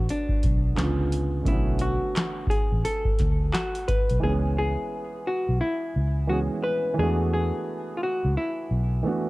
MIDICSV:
0, 0, Header, 1, 5, 480
1, 0, Start_track
1, 0, Tempo, 689655
1, 1015, Time_signature, 4, 2, 24, 8
1, 6469, End_track
2, 0, Start_track
2, 0, Title_t, "Hollow-body jazz guitar"
2, 0, Program_c, 0, 26
2, 0, Note_on_c, 0, 66, 95
2, 72, Note_on_c, 0, 62, 83
2, 76, Note_off_c, 0, 66, 0
2, 756, Note_off_c, 0, 62, 0
2, 1029, Note_on_c, 0, 64, 75
2, 1263, Note_on_c, 0, 66, 86
2, 1269, Note_off_c, 0, 64, 0
2, 1737, Note_off_c, 0, 66, 0
2, 1740, Note_on_c, 0, 68, 95
2, 1979, Note_off_c, 0, 68, 0
2, 1982, Note_on_c, 0, 69, 91
2, 2461, Note_on_c, 0, 66, 92
2, 2670, Note_off_c, 0, 69, 0
2, 2700, Note_on_c, 0, 71, 93
2, 2705, Note_off_c, 0, 66, 0
2, 2921, Note_off_c, 0, 71, 0
2, 2947, Note_on_c, 0, 68, 96
2, 3010, Note_off_c, 0, 68, 0
2, 3191, Note_on_c, 0, 68, 104
2, 3670, Note_on_c, 0, 66, 93
2, 3677, Note_off_c, 0, 68, 0
2, 3900, Note_off_c, 0, 66, 0
2, 3903, Note_on_c, 0, 64, 96
2, 4378, Note_off_c, 0, 64, 0
2, 4381, Note_on_c, 0, 66, 91
2, 4445, Note_off_c, 0, 66, 0
2, 4618, Note_on_c, 0, 71, 93
2, 4864, Note_off_c, 0, 71, 0
2, 4867, Note_on_c, 0, 68, 95
2, 5097, Note_off_c, 0, 68, 0
2, 5105, Note_on_c, 0, 68, 95
2, 5516, Note_off_c, 0, 68, 0
2, 5549, Note_on_c, 0, 65, 58
2, 5580, Note_off_c, 0, 65, 0
2, 5590, Note_on_c, 0, 66, 89
2, 5806, Note_off_c, 0, 66, 0
2, 5827, Note_on_c, 0, 64, 84
2, 6469, Note_off_c, 0, 64, 0
2, 6469, End_track
3, 0, Start_track
3, 0, Title_t, "Felt piano"
3, 0, Program_c, 1, 0
3, 0, Control_c, 1, 64, 127
3, 0, Note_on_c, 1, 50, 66
3, 0, Note_on_c, 1, 57, 60
3, 0, Note_on_c, 1, 59, 62
3, 0, Note_on_c, 1, 66, 67
3, 0, Note_on_c, 1, 73, 55
3, 493, Note_off_c, 1, 50, 0
3, 501, Note_off_c, 1, 57, 0
3, 509, Note_off_c, 1, 59, 0
3, 518, Note_off_c, 1, 73, 0
3, 524, Note_on_c, 1, 50, 61
3, 525, Note_off_c, 1, 66, 0
3, 533, Note_on_c, 1, 56, 64
3, 539, Note_on_c, 1, 59, 57
3, 543, Control_c, 1, 64, 0
3, 549, Note_on_c, 1, 49, 63
3, 559, Note_on_c, 1, 65, 67
3, 666, Control_c, 1, 64, 127
3, 984, Note_off_c, 1, 49, 0
3, 994, Note_on_c, 1, 49, 56
3, 1009, Note_off_c, 1, 50, 0
3, 1013, Note_on_c, 1, 57, 61
3, 1014, Note_off_c, 1, 56, 0
3, 1014, Note_off_c, 1, 59, 0
3, 1025, Control_c, 1, 64, 0
3, 1025, Note_on_c, 1, 59, 58
3, 1027, Note_off_c, 1, 65, 0
3, 1037, Note_on_c, 1, 50, 62
3, 1043, Note_on_c, 1, 61, 57
3, 1057, Note_on_c, 1, 66, 65
3, 1061, Note_off_c, 1, 49, 0
3, 1141, Control_c, 1, 64, 127
3, 2906, Note_off_c, 1, 57, 0
3, 2912, Note_off_c, 1, 59, 0
3, 2918, Note_off_c, 1, 50, 0
3, 2921, Note_off_c, 1, 61, 0
3, 2922, Note_on_c, 1, 52, 61
3, 2928, Note_off_c, 1, 66, 0
3, 2936, Note_on_c, 1, 56, 62
3, 2942, Control_c, 1, 64, 0
3, 2952, Note_on_c, 1, 59, 59
3, 2969, Note_on_c, 1, 61, 56
3, 2986, Note_on_c, 1, 68, 67
3, 3054, Control_c, 1, 64, 127
3, 4341, Note_off_c, 1, 52, 0
3, 4347, Note_off_c, 1, 56, 0
3, 4355, Note_off_c, 1, 59, 0
3, 4364, Note_off_c, 1, 61, 0
3, 4367, Note_on_c, 1, 52, 51
3, 4372, Note_off_c, 1, 68, 0
3, 4377, Note_on_c, 1, 56, 43
3, 4385, Note_on_c, 1, 59, 48
3, 4396, Note_on_c, 1, 61, 46
3, 4402, Note_on_c, 1, 68, 57
3, 4819, Note_off_c, 1, 52, 0
3, 4829, Note_on_c, 1, 52, 67
3, 4838, Note_off_c, 1, 56, 0
3, 4848, Note_on_c, 1, 56, 43
3, 4856, Note_off_c, 1, 59, 0
3, 4864, Control_c, 1, 64, 0
3, 4865, Note_off_c, 1, 61, 0
3, 4866, Note_on_c, 1, 59, 61
3, 4868, Note_off_c, 1, 68, 0
3, 4880, Note_on_c, 1, 62, 61
3, 4895, Note_on_c, 1, 57, 57
3, 4896, Note_on_c, 1, 66, 73
3, 4908, Note_off_c, 1, 56, 0
3, 4970, Control_c, 1, 64, 127
3, 6254, Note_off_c, 1, 52, 0
3, 6272, Note_off_c, 1, 59, 0
3, 6279, Note_off_c, 1, 62, 0
3, 6282, Note_off_c, 1, 57, 0
3, 6283, Note_on_c, 1, 52, 51
3, 6287, Note_off_c, 1, 66, 0
3, 6292, Note_on_c, 1, 57, 51
3, 6300, Note_on_c, 1, 59, 47
3, 6308, Note_on_c, 1, 62, 44
3, 6317, Note_on_c, 1, 66, 59
3, 6469, Note_off_c, 1, 52, 0
3, 6469, Note_off_c, 1, 57, 0
3, 6469, Note_off_c, 1, 59, 0
3, 6469, Note_off_c, 1, 62, 0
3, 6469, Note_off_c, 1, 66, 0
3, 6469, End_track
4, 0, Start_track
4, 0, Title_t, "Fingered electric bass"
4, 0, Program_c, 2, 33
4, 309, Note_on_c, 2, 35, 81
4, 523, Note_off_c, 2, 35, 0
4, 538, Note_on_c, 2, 37, 96
4, 989, Note_off_c, 2, 37, 0
4, 1016, Note_on_c, 2, 35, 90
4, 1379, Note_off_c, 2, 35, 0
4, 1895, Note_on_c, 2, 33, 77
4, 1972, Note_off_c, 2, 33, 0
4, 2231, Note_on_c, 2, 38, 77
4, 2444, Note_off_c, 2, 38, 0
4, 2859, Note_on_c, 2, 35, 80
4, 2935, Note_off_c, 2, 35, 0
4, 2949, Note_on_c, 2, 37, 97
4, 3305, Note_off_c, 2, 37, 0
4, 3820, Note_on_c, 2, 35, 83
4, 3895, Note_off_c, 2, 35, 0
4, 4149, Note_on_c, 2, 37, 82
4, 4505, Note_off_c, 2, 37, 0
4, 4864, Note_on_c, 2, 40, 97
4, 5223, Note_off_c, 2, 40, 0
4, 5740, Note_on_c, 2, 37, 84
4, 5815, Note_off_c, 2, 37, 0
4, 6062, Note_on_c, 2, 35, 85
4, 6279, Note_off_c, 2, 35, 0
4, 6469, End_track
5, 0, Start_track
5, 0, Title_t, "Drums"
5, 64, Note_on_c, 9, 42, 69
5, 133, Note_off_c, 9, 42, 0
5, 202, Note_on_c, 9, 36, 84
5, 271, Note_off_c, 9, 36, 0
5, 299, Note_on_c, 9, 42, 54
5, 305, Note_on_c, 9, 36, 90
5, 368, Note_off_c, 9, 42, 0
5, 375, Note_off_c, 9, 36, 0
5, 541, Note_on_c, 9, 39, 75
5, 546, Note_on_c, 9, 42, 78
5, 547, Note_on_c, 9, 38, 102
5, 611, Note_off_c, 9, 39, 0
5, 616, Note_off_c, 9, 38, 0
5, 616, Note_off_c, 9, 42, 0
5, 781, Note_on_c, 9, 42, 63
5, 851, Note_off_c, 9, 42, 0
5, 1012, Note_on_c, 9, 36, 111
5, 1019, Note_on_c, 9, 42, 73
5, 1082, Note_off_c, 9, 36, 0
5, 1089, Note_off_c, 9, 42, 0
5, 1246, Note_on_c, 9, 42, 62
5, 1315, Note_off_c, 9, 42, 0
5, 1505, Note_on_c, 9, 42, 71
5, 1507, Note_on_c, 9, 39, 79
5, 1513, Note_on_c, 9, 38, 105
5, 1575, Note_off_c, 9, 42, 0
5, 1577, Note_off_c, 9, 39, 0
5, 1582, Note_off_c, 9, 38, 0
5, 1720, Note_on_c, 9, 36, 94
5, 1747, Note_on_c, 9, 42, 56
5, 1789, Note_off_c, 9, 36, 0
5, 1817, Note_off_c, 9, 42, 0
5, 1984, Note_on_c, 9, 42, 77
5, 2053, Note_off_c, 9, 42, 0
5, 2123, Note_on_c, 9, 36, 82
5, 2193, Note_off_c, 9, 36, 0
5, 2218, Note_on_c, 9, 42, 55
5, 2224, Note_on_c, 9, 38, 31
5, 2227, Note_on_c, 9, 36, 85
5, 2287, Note_off_c, 9, 42, 0
5, 2293, Note_off_c, 9, 38, 0
5, 2296, Note_off_c, 9, 36, 0
5, 2463, Note_on_c, 9, 39, 82
5, 2467, Note_on_c, 9, 42, 78
5, 2468, Note_on_c, 9, 38, 98
5, 2532, Note_off_c, 9, 39, 0
5, 2537, Note_off_c, 9, 42, 0
5, 2538, Note_off_c, 9, 38, 0
5, 2610, Note_on_c, 9, 42, 47
5, 2680, Note_off_c, 9, 42, 0
5, 2704, Note_on_c, 9, 36, 87
5, 2704, Note_on_c, 9, 42, 65
5, 2773, Note_off_c, 9, 42, 0
5, 2774, Note_off_c, 9, 36, 0
5, 2850, Note_on_c, 9, 42, 41
5, 2920, Note_off_c, 9, 42, 0
5, 6469, End_track
0, 0, End_of_file